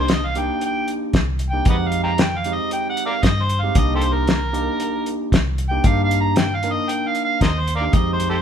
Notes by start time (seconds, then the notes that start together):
Already playing: C2 A#3 D4 D#4 G4
0.00 C5
0.08 D#5, snare, closed hi-hat
0.26 F5
0.35 A#3 D4 D#4 G4 G5, closed hi-hat
0.61 closed hi-hat
0.66 G5
0.88 closed hi-hat
1.13 C2, kick, snare, closed hi-hat
1.39 closed hi-hat
1.50 A#3 D4 D#4 G4 G5
1.65 F2 G#3 C4 D#4 G4, kick, closed hi-hat
1.70 B4 D#5 F#5
1.87 F5
1.92 closed hi-hat
2.04 F5 G5 A#5
2.18 G5, snare, closed hi-hat
2.38 F5
2.44 G#3 C4 D#4 G4, closed hi-hat
2.54 D#5
2.71 G5, closed hi-hat
2.90 F#5
2.97 closed hi-hat
3.06 A#4 D5 F5
3.23 G2 D#5, kick, snare, closed hi-hat
3.43 C5
3.50 closed hi-hat
3.60 G#3 C4 D#4 G4 F5
3.75 C2 A#3 D4 D#4 G4 D#5, kick, closed hi-hat
3.95 G4 A4 C5
4.02 closed hi-hat
4.13 A#4
4.27 snare, closed hi-hat
4.53 A#3 D4 D#4 G4, closed hi-hat
4.80 closed hi-hat
5.06 closed hi-hat
5.32 C2, kick, snare, closed hi-hat
5.58 closed hi-hat
5.69 A#3 D4 D#4 G4 G5
5.84 G2 A#3 D4 D#4 G4 F5, kick, closed hi-hat
6.04 F5
6.11 closed hi-hat
6.21 A#5
6.36 G5, snare, closed hi-hat
6.55 F5
6.63 A#3 D4 D#4 A#4, closed hi-hat
6.72 D#5
6.89 G5, closed hi-hat
7.08 F5
7.15 closed hi-hat
7.24 F5
7.41 D#2 A#4 C5 D#5, kick, snare, closed hi-hat
7.59 C5
7.67 closed hi-hat
7.76 A#4 D5 F5
7.81 A#3 D4 D#4 G4
7.93 F2 G#3 C4 D#4 G4 D#5, kick, closed hi-hat
8.13 C5
8.20 closed hi-hat
8.30 G4 A4 C5